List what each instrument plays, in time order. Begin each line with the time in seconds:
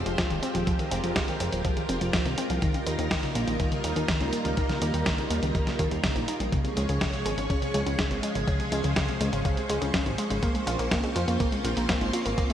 Already playing: string machine G#3 C4 F4 G4 C5
0.06 analog synth bass F1, synth arpeggio sound F3, closed hi-hat
0.18 synth arpeggio sound F3, kick, snare, closed hi-hat
0.30 analog synth bass D#1, synth arpeggio sound D#3, closed hi-hat
0.43 synth arpeggio sound C4, closed hi-hat
0.55 analog synth bass D#1, synth arpeggio sound F3, closed hi-hat
0.67 synth arpeggio sound F3, string machine A#4, kick, closed hi-hat
0.79 synth arpeggio sound D#3, closed hi-hat
0.91 analog synth bass F1, synth arpeggio sound C4, closed hi-hat
1.03 analog synth bass F1, synth arpeggio sound F3, closed hi-hat
1.16 synth arpeggio sound F3, kick, snare, closed hi-hat
1.28 synth arpeggio sound D#3, closed hi-hat
1.40 analog synth bass F1, synth arpeggio sound C4, closed hi-hat
1.52 analog synth bass D#1, synth arpeggio sound F3, closed hi-hat
1.65 synth arpeggio sound F3, kick, closed hi-hat
1.77 synth arpeggio sound D#3, closed hi-hat
1.89 analog synth bass F1, synth arpeggio sound C4, closed hi-hat
2.01 analog synth bass F1, synth arpeggio sound F3, closed hi-hat
2.13 synth arpeggio sound F3, kick, snare, closed hi-hat
2.25 analog synth bass C2, synth arpeggio sound D#3, closed hi-hat
2.38 synth arpeggio sound C4, closed hi-hat
2.50 analog synth bass C2, synth arpeggio sound F3, closed hi-hat
2.62 synth arpeggio sound D#3, string machine G3 A#3 D#4, kick, closed hi-hat
2.74 synth arpeggio sound C#3, closed hi-hat
2.87 analog synth bass D#2, synth arpeggio sound A#3, closed hi-hat
2.99 analog synth bass D#2, synth arpeggio sound D#3, closed hi-hat
3.11 synth arpeggio sound D#3, kick, snare, closed hi-hat
3.23 synth arpeggio sound C#3, closed hi-hat
3.35 analog synth bass A#1, synth arpeggio sound A#3, closed hi-hat
3.47 analog synth bass A#1, synth arpeggio sound D#3, closed hi-hat
3.60 synth arpeggio sound D#3, kick, closed hi-hat
3.72 synth arpeggio sound C#3, closed hi-hat
3.84 analog synth bass D#2, synth arpeggio sound A#3, closed hi-hat
3.96 analog synth bass D#2, synth arpeggio sound D#3, closed hi-hat
4.08 synth arpeggio sound D#3, kick, snare, closed hi-hat
4.21 analog synth bass C#2, synth arpeggio sound C#3, closed hi-hat
4.33 synth arpeggio sound A#3, closed hi-hat
4.45 analog synth bass C#2, synth arpeggio sound D#3, closed hi-hat
4.57 synth arpeggio sound D#3, kick, closed hi-hat
4.69 synth arpeggio sound C#3, snare, closed hi-hat
4.82 analog synth bass D#2, synth arpeggio sound A#3, closed hi-hat
4.94 analog synth bass D#2, synth arpeggio sound D#3, closed hi-hat
5.06 synth arpeggio sound D#3, kick, snare, closed hi-hat
5.18 synth arpeggio sound C#3, closed hi-hat
5.30 analog synth bass D#2, synth arpeggio sound A#3, closed hi-hat
5.43 analog synth bass C#2, synth arpeggio sound D#3, closed hi-hat
5.55 synth arpeggio sound D#3, kick, closed hi-hat
5.67 synth arpeggio sound C#3, snare, closed hi-hat
5.79 analog synth bass D#2, synth arpeggio sound D#4, kick, closed hi-hat
5.91 analog synth bass D#2, synth arpeggio sound G3, closed hi-hat
6.03 synth arpeggio sound C#3, kick, snare, closed hi-hat
6.16 analog synth bass A#1, synth arpeggio sound D#4, closed hi-hat
6.28 synth arpeggio sound D#4, closed hi-hat
6.40 analog synth bass A#1, synth arpeggio sound G3, closed hi-hat
6.52 synth arpeggio sound C#3, string machine F3 G#3 C#4 G#4 C#5, kick, closed hi-hat
6.64 synth arpeggio sound C3, closed hi-hat
6.77 analog synth bass C#2, synth arpeggio sound G#3, closed hi-hat
6.89 analog synth bass C#2, synth arpeggio sound C#3, closed hi-hat
7.01 synth arpeggio sound C#3, kick, snare, closed hi-hat
7.13 synth arpeggio sound C3, closed hi-hat
7.25 analog synth bass G#1, synth arpeggio sound G#3, closed hi-hat
7.38 analog synth bass G#1, synth arpeggio sound C#3, closed hi-hat
7.50 synth arpeggio sound C#3, kick, closed hi-hat
7.62 synth arpeggio sound C3, closed hi-hat
7.74 analog synth bass C#2, synth arpeggio sound G#3, closed hi-hat
7.86 analog synth bass C#2, synth arpeggio sound C#3, closed hi-hat
7.99 synth arpeggio sound C#3, kick, snare, closed hi-hat
8.11 analog synth bass G#1, synth arpeggio sound C3, closed hi-hat
8.23 synth arpeggio sound G#3, closed hi-hat
8.35 analog synth bass G#1, synth arpeggio sound C#3, closed hi-hat
8.47 synth arpeggio sound C#3, string machine C5, kick, closed hi-hat
8.60 synth arpeggio sound C3, closed hi-hat
8.72 analog synth bass C#2, synth arpeggio sound G#3, closed hi-hat
8.84 analog synth bass C#2, synth arpeggio sound C#3, closed hi-hat
8.96 synth arpeggio sound C#3, kick, snare, closed hi-hat
9.08 synth arpeggio sound C3, closed hi-hat
9.21 analog synth bass C#2, synth arpeggio sound G#3, closed hi-hat
9.33 analog synth bass G#1, synth arpeggio sound C#3, closed hi-hat
9.45 synth arpeggio sound C#3, kick, closed hi-hat
9.57 synth arpeggio sound C3, closed hi-hat
9.69 analog synth bass C#2, synth arpeggio sound G#3, closed hi-hat
9.82 analog synth bass C#2, synth arpeggio sound C#3, closed hi-hat
9.94 synth arpeggio sound C#3, kick, snare, closed hi-hat
10.06 analog synth bass G#1, synth arpeggio sound C3, closed hi-hat
10.18 synth arpeggio sound G#3, closed hi-hat
10.30 analog synth bass G#1, synth arpeggio sound C#3, closed hi-hat
10.42 synth arpeggio sound A#3, string machine A#3 C4 F4, kick, closed hi-hat
10.55 synth arpeggio sound G#3, closed hi-hat
10.67 analog synth bass A#1, synth arpeggio sound F4, closed hi-hat
10.79 analog synth bass A#1, synth arpeggio sound A#3, closed hi-hat
10.91 synth arpeggio sound A#3, kick, snare, closed hi-hat
11.03 synth arpeggio sound G#3, closed hi-hat
11.16 analog synth bass F2, synth arpeggio sound F4, closed hi-hat
11.28 analog synth bass F2, synth arpeggio sound A#3, closed hi-hat
11.40 synth arpeggio sound A#3, kick, closed hi-hat
11.52 synth arpeggio sound G#3, closed hi-hat
11.64 analog synth bass A#1, synth arpeggio sound F4, closed hi-hat
11.77 analog synth bass A#1, synth arpeggio sound A#3, closed hi-hat
11.89 synth arpeggio sound A#3, kick, snare, closed hi-hat
12.01 analog synth bass G#1, synth arpeggio sound G#3, closed hi-hat
12.13 synth arpeggio sound F4, closed hi-hat
12.25 analog synth bass G#1, synth arpeggio sound A#3, closed hi-hat
12.38 synth arpeggio sound A#3, kick, closed hi-hat
12.50 synth arpeggio sound G#3, closed hi-hat